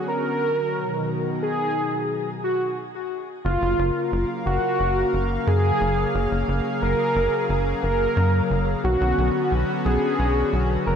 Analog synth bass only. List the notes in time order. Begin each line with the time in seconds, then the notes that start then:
3.45 F#1
3.62 F#1
3.79 F#1
4.12 F#1
4.46 F#1
4.80 F#1
5.13 F#1
5.47 F#2
5.81 F#1
6.15 F#1
6.31 F#1
6.48 F#1
6.82 F#1
7.16 F#1
7.49 F#1
7.83 F#1
8.17 F#2
8.50 F#1
8.84 B1
9.01 B1
9.18 B1
9.52 B1
9.85 B1
10.19 B1
10.53 B1
10.87 F#1